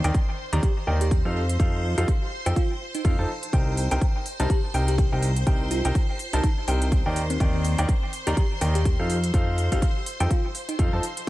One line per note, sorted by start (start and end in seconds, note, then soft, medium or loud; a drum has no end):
0.00 11.26 C5 medium
0.00 11.26 C6 medium
0.04 0.11 D#2 medium
0.04 0.13 D#3 medium
0.04 0.13 D#4 medium
0.04 0.13 A#4 medium
0.04 0.13 D5 medium
0.04 0.13 G5 medium
0.04 closed hi-hat medium
0.14 kick loud
0.14 closed hi-hat soft
0.53 0.60 D#2 medium
0.53 0.62 D#3 medium
0.53 0.62 D#4 medium
0.53 0.59 G4 medium
0.53 0.62 A#4 medium
0.53 0.62 D5 medium
0.53 0.62 A#5 loud
0.53 closed hi-hat medium
0.63 0.72 G4 medium
0.63 kick loud
0.63 closed hi-hat medium
0.87 1.22 D#2 loud
0.87 1.05 D#3 medium
0.87 1.05 D#4 medium
0.87 1.05 A#4 medium
0.87 1.05 D5 medium
0.87 1.05 G5 medium
1.01 1.41 G4 medium
1.01 closed hi-hat medium
1.11 kick loud
1.11 closed hi-hat soft
1.25 1.58 F2 medium
1.25 1.41 F3 medium
1.25 1.41 D#4 medium
1.25 1.41 A4 medium
1.25 1.41 C5 medium
1.25 1.41 F5 medium
1.49 closed hi-hat medium
1.60 1.95 F2 medium
1.60 1.94 F3 medium
1.60 1.94 D#4 medium
1.60 1.94 A4 medium
1.60 1.94 C5 medium
1.60 1.94 F5 medium
1.60 kick loud
1.60 closed hi-hat soft
1.98 2.05 F2 medium
1.98 2.07 F3 medium
1.98 2.07 D#4 medium
1.98 2.11 G4 medium
1.98 2.07 A4 medium
1.98 2.07 C5 medium
1.98 2.07 F5 medium
1.98 closed hi-hat medium
2.08 kick loud
2.08 closed hi-hat soft
2.46 2.53 F2 medium
2.46 2.55 F3 medium
2.46 2.55 D#4 medium
2.46 2.55 A4 medium
2.46 2.55 C5 medium
2.46 2.55 G5 loud
2.46 closed hi-hat medium
2.56 2.73 F4 medium
2.56 kick loud
2.56 closed hi-hat soft
2.95 3.01 D#4 medium
2.95 closed hi-hat medium
3.05 3.16 F2 medium
3.05 3.15 F3 medium
3.05 3.15 D#4 medium
3.05 3.14 D#4 medium
3.05 3.15 A4 medium
3.05 3.15 C5 medium
3.05 3.15 F5 medium
3.05 kick loud
3.05 closed hi-hat soft
3.19 3.26 F2 medium
3.19 3.28 F3 medium
3.19 3.28 D#4 medium
3.19 3.28 A4 medium
3.19 3.28 C5 medium
3.19 3.28 A5 medium
3.43 closed hi-hat medium
3.53 3.88 C2 medium
3.53 3.88 C3 medium
3.53 3.88 D#4 medium
3.53 3.88 A#4 medium
3.53 3.88 C5 medium
3.53 3.88 G5 medium
3.53 kick loud
3.53 closed hi-hat soft
3.77 open hi-hat loud
3.91 3.98 C2 medium
3.91 4.00 C3 medium
3.91 4.00 D#4 medium
3.91 4.00 A#4 medium
3.91 4.00 C5 medium
3.91 4.00 G5 loud
3.91 closed hi-hat medium
4.01 kick loud
4.01 closed hi-hat soft
4.26 open hi-hat medium
4.40 4.47 C2 medium
4.40 4.49 C3 medium
4.40 4.49 D#4 medium
4.40 4.46 G4 medium
4.40 4.49 A#4 medium
4.40 4.49 C5 medium
4.40 4.49 A5 loud
4.40 closed hi-hat medium
4.50 4.59 G4 medium
4.50 kick loud
4.50 closed hi-hat medium
4.74 5.09 C2 medium
4.74 4.92 C3 medium
4.74 4.92 D#4 medium
4.74 4.92 A#4 medium
4.74 4.92 C5 medium
4.74 4.92 G5 medium
4.74 open hi-hat medium
4.88 5.37 G4 medium
4.88 closed hi-hat medium
4.98 kick loud
4.98 closed hi-hat soft
5.12 5.45 C2 medium
5.12 5.28 C3 medium
5.12 5.28 D#4 medium
5.12 5.28 A#4 medium
5.12 5.28 C5 medium
5.12 5.28 G5 medium
5.23 open hi-hat loud
5.37 closed hi-hat medium
5.47 5.82 C2 medium
5.47 5.82 C3 medium
5.47 5.82 D#4 medium
5.47 5.82 A#4 medium
5.47 5.82 C5 medium
5.47 5.82 G5 medium
5.47 kick loud
5.47 closed hi-hat soft
5.71 5.87 F4 medium
5.71 open hi-hat medium
5.85 5.92 C2 medium
5.85 5.94 C3 medium
5.85 5.94 D#4 medium
5.85 5.94 A#4 medium
5.85 5.94 C5 medium
5.85 5.94 G5 loud
5.85 closed hi-hat medium
5.95 kick loud
5.95 closed hi-hat medium
6.19 open hi-hat loud
6.33 6.40 C2 medium
6.33 6.42 C3 medium
6.33 6.47 D#4 medium
6.33 6.42 D#4 medium
6.33 6.42 A#4 medium
6.33 6.42 C5 medium
6.33 6.42 A5 loud
6.33 closed hi-hat medium
6.44 kick loud
6.44 closed hi-hat medium
6.68 7.03 C2 medium
6.68 6.86 C3 medium
6.68 6.86 D#4 medium
6.68 6.86 A#4 medium
6.68 6.86 C5 medium
6.68 6.86 G5 medium
6.68 open hi-hat medium
6.82 closed hi-hat medium
6.92 kick loud
6.92 closed hi-hat soft
7.06 7.38 D#2 medium
7.06 7.22 D#3 medium
7.06 7.22 D#4 medium
7.06 7.22 A#4 medium
7.06 7.22 D5 medium
7.06 7.22 G5 medium
7.16 open hi-hat medium
7.30 7.78 C4 medium
7.30 closed hi-hat medium
7.40 7.76 D#2 loud
7.40 7.75 D#3 medium
7.40 7.75 D#4 medium
7.40 7.75 A#4 medium
7.40 7.75 D5 medium
7.40 7.75 G5 medium
7.40 kick loud
7.40 closed hi-hat medium
7.65 open hi-hat medium
7.78 7.85 D#2 medium
7.78 7.88 D#3 medium
7.78 7.88 D#4 medium
7.78 7.88 A#4 medium
7.78 7.88 D5 medium
7.78 7.88 G5 loud
7.78 closed hi-hat medium
7.89 kick loud
7.89 closed hi-hat medium
8.13 open hi-hat loud
8.27 8.34 D#2 medium
8.27 8.36 D#3 medium
8.27 8.36 D#4 medium
8.27 8.33 G4 medium
8.27 8.36 A#4 medium
8.27 8.36 D5 medium
8.27 8.36 A#5 loud
8.27 closed hi-hat medium
8.37 8.46 G4 medium
8.37 kick loud
8.37 closed hi-hat medium
8.61 8.97 D#2 medium
8.61 8.79 D#3 medium
8.61 8.79 D#4 medium
8.61 8.79 A#4 medium
8.61 8.79 D5 medium
8.61 8.79 G5 medium
8.61 open hi-hat medium
8.75 9.15 G4 medium
8.75 closed hi-hat medium
8.85 kick loud
8.85 closed hi-hat medium
8.99 9.32 F2 medium
8.99 9.15 F3 medium
8.99 9.15 D#4 medium
8.99 9.15 A4 medium
8.99 9.15 C5 medium
8.99 9.15 F5 medium
9.10 open hi-hat medium
9.24 closed hi-hat medium
9.34 9.69 F2 medium
9.34 9.69 F3 medium
9.34 9.69 D#4 medium
9.34 9.69 A4 medium
9.34 9.69 C5 medium
9.34 9.69 F5 medium
9.34 kick loud
9.34 closed hi-hat medium
9.58 open hi-hat medium
9.72 9.79 F2 medium
9.72 9.81 F3 medium
9.72 9.81 D#4 medium
9.72 9.85 G4 medium
9.72 9.81 A4 medium
9.72 9.81 C5 medium
9.72 9.81 F5 loud
9.72 kick medium
9.72 closed hi-hat medium
9.82 kick loud
9.82 closed hi-hat medium
10.06 open hi-hat medium
10.20 10.27 F2 medium
10.20 10.29 F3 medium
10.20 10.29 D#4 medium
10.20 10.29 A4 medium
10.20 10.29 C5 medium
10.20 10.29 G5 loud
10.20 closed hi-hat medium
10.31 10.47 F4 medium
10.31 kick loud
10.31 closed hi-hat medium
10.55 open hi-hat loud
10.69 10.75 D#4 medium
10.69 closed hi-hat medium
10.79 10.90 F2 medium
10.79 10.90 F3 medium
10.79 10.88 D#4 medium
10.79 10.90 D#4 medium
10.79 10.90 A4 medium
10.79 10.90 C5 medium
10.79 10.90 F5 medium
10.79 kick loud
10.79 closed hi-hat medium
10.93 11.00 F2 loud
10.93 11.02 F3 medium
10.93 11.02 D#4 medium
10.93 11.02 A4 medium
10.93 11.02 C5 medium
10.93 11.02 A5 medium
11.03 open hi-hat loud
11.17 closed hi-hat medium